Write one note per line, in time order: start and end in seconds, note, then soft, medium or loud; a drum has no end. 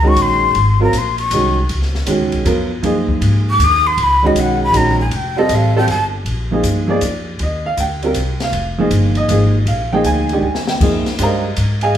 0.00 0.15 C#2 loud
0.00 0.52 D#3 medium
0.00 0.52 G#3 medium
0.00 0.52 C#4 medium
0.04 0.53 F#4 medium
0.04 0.23 C#6 loud
0.16 0.54 A#1 loud
0.16 hi-hat pedal medium
0.16 ride medium
0.22 0.82 C6 medium
0.55 0.92 G#1 medium
0.55 ride medium
0.80 0.92 F#3 medium
0.80 0.92 C4 medium
0.80 0.92 F4 medium
0.80 0.92 A#4 medium
0.80 1.00 A#5 medium
0.93 1.30 A#1 medium
0.93 hi-hat pedal medium
0.93 ride medium
0.98 1.18 C6 medium
1.18 1.66 C#6 loud
1.18 ride soft
1.31 1.68 C2 medium
1.31 1.54 D#3 medium
1.31 1.55 G#3 medium
1.31 1.55 C#4 medium
1.31 1.55 F#4 medium
1.31 hi-hat pedal medium
1.31 ride medium
1.69 2.06 C#2 medium
1.69 ride medium
1.82 snare soft
1.95 snare soft
2.06 2.20 D#2 medium
2.06 2.44 D#3 medium
2.06 2.44 G#3 medium
2.06 2.44 C#4 medium
2.06 2.45 F#4 medium
2.06 hi-hat pedal medium
2.06 ride medium
2.20 2.32 C#2 medium
2.32 2.44 B1 medium
2.32 ride medium
2.44 2.82 F2 loud
2.44 2.68 F#3 medium
2.44 2.68 B3 medium
2.44 2.68 F4 medium
2.44 2.69 A#4 medium
2.44 hi-hat pedal soft
2.44 ride medium
2.83 3.20 F#2 medium
2.83 3.89 F3 medium
2.83 3.90 A#3 medium
2.83 3.90 D#4 medium
2.83 3.91 G#4 medium
2.83 ride medium
3.08 kick medium
3.21 3.58 G#2 loud
3.21 ride medium
3.50 3.65 D6 loud
3.59 3.96 D#2 loud
3.59 hi-hat pedal medium
3.59 ride medium
3.64 3.88 D#6 loud
3.86 4.04 C6 loud
3.97 4.34 C#2 medium
3.97 ride medium
4.03 4.28 B5 loud
4.22 4.71 D#3 medium
4.22 4.71 G#3 medium
4.22 4.71 C#4 medium
4.22 4.72 F#4 medium
4.26 4.41 D#5 medium
4.35 4.72 B1 medium
4.35 hi-hat pedal medium
4.35 ride medium
4.40 4.63 F#5 medium
4.63 4.78 B5 loud
4.72 5.10 A#1 loud
4.72 4.96 D#3 medium
4.72 4.96 G#3 medium
4.72 4.96 C#4 medium
4.72 4.96 F#4 medium
4.72 hi-hat pedal medium
4.72 ride medium
4.77 4.99 A#5 medium
5.00 5.17 G#5 medium
5.11 5.48 F1 medium
5.11 ride medium
5.15 5.40 G5 medium
5.36 5.72 G3 medium
5.36 5.73 C4 medium
5.36 5.73 F4 medium
5.36 5.73 A4 medium
5.36 5.56 D#5 loud
5.49 5.87 A1 loud
5.49 hi-hat pedal medium
5.49 ride medium
5.55 5.77 F5 medium
5.76 5.87 G3 medium
5.76 5.87 C4 medium
5.76 5.87 F4 medium
5.76 5.87 A4 loud
5.76 5.88 G5 loud
5.87 6.24 G1 loud
5.87 6.04 A5 medium
5.87 ride medium
6.25 6.62 A#1 medium
6.25 ride medium
6.51 6.86 F3 medium
6.51 6.86 A#3 medium
6.51 6.87 D#4 medium
6.51 6.88 G#4 medium
6.63 7.01 G2 medium
6.63 hi-hat pedal medium
6.63 ride medium
6.87 7.00 F3 medium
6.87 7.00 A#3 medium
6.87 7.01 D#4 medium
6.87 7.01 G#4 medium
6.87 7.37 D5 medium
7.01 7.39 F2 medium
7.01 hi-hat pedal medium
7.01 ride medium
7.39 7.76 D#2 medium
7.39 7.66 D#5 medium
7.39 ride medium
7.66 7.78 F5 loud
7.77 8.14 D2 medium
7.77 8.38 G5 medium
7.77 hi-hat pedal medium
7.77 ride medium
8.02 8.14 G3 medium
8.02 8.15 C4 medium
8.02 8.15 F4 medium
8.02 8.15 A#4 medium
8.02 ride soft
8.14 8.52 C2 medium
8.14 hi-hat pedal medium
8.14 ride medium
8.40 8.78 F5 medium
8.40 snare medium
8.40 ride soft
8.52 8.90 F1 medium
8.52 ride medium
8.78 9.27 F3 medium
8.78 9.27 A#3 medium
8.78 9.27 D#4 medium
8.78 9.28 G#4 medium
8.91 9.28 G1 loud
8.91 hi-hat pedal medium
8.91 ride medium
9.15 9.64 D#5 medium
9.15 ride soft
9.28 9.65 G#1 medium
9.28 9.53 F3 medium
9.28 9.53 A#3 medium
9.28 9.53 D#4 medium
9.28 9.53 G#4 medium
9.28 hi-hat pedal medium
9.28 ride medium
9.66 10.04 A#1 medium
9.66 9.92 F5 medium
9.66 ride medium
9.92 10.28 F3 medium
9.92 10.29 A#3 medium
9.92 10.29 D#4 medium
9.92 10.29 G#4 medium
9.92 10.05 G5 medium
10.04 10.42 D2 loud
10.04 10.65 G#5 medium
10.04 hi-hat pedal medium
10.04 ride medium
10.29 10.43 D#3 medium
10.29 10.43 G#3 medium
10.29 ride soft
10.33 10.44 D4 medium
10.33 10.44 G4 medium
10.42 10.80 D#2 medium
10.55 snare medium
10.68 11.04 G5 medium
10.68 snare medium
10.81 11.05 F2 medium
10.81 11.04 F3 medium
10.81 11.04 A#3 medium
10.81 11.04 D#4 medium
10.81 11.05 G#4 medium
10.81 kick medium
10.81 crash medium
11.06 muted upright bass stroke soft
11.06 snare medium
11.06 ride soft
11.19 11.56 G2 loud
11.19 11.42 G#3 medium
11.19 11.42 D4 medium
11.19 11.42 G4 medium
11.19 11.80 A#4 medium
11.19 11.43 C5 medium
11.19 11.80 D#5 medium
11.19 11.80 F5 medium
11.19 11.80 A#5 medium
11.19 hi-hat pedal medium
11.19 ride medium
11.56 11.95 G#2 medium
11.56 hi-hat pedal medium
11.56 ride medium
11.81 11.97 G#4 medium
11.81 11.97 D#5 medium
11.81 11.97 F5 medium
11.81 11.97 G#5 medium
11.81 ride medium